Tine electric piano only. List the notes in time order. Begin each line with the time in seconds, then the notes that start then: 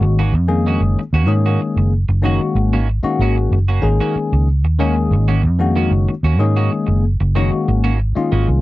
Already playing: D#3 G#3 A#3 C#4 F#4
0.47 D#3 G#3 A#3 C#4 G#4
1.26 D#3 G#3 A#3 C#4 G#4
2.22 D#3 G#3 A#3 C#4 F#4
3.03 D#3 G#3 A#3 C#4 F#4
3.81 D#3 G#3 A#3 C#4 G#4
4.79 D#3 G#3 A#3 C#4 G#4
5.59 D#3 G#3 A#3 C#4 F#4
6.39 D#3 G#3 A#3 C#4 G#4
7.35 D#3 G#3 A#3 C#4 F#4
8.16 D#3 G#3 A#3 C#4 F4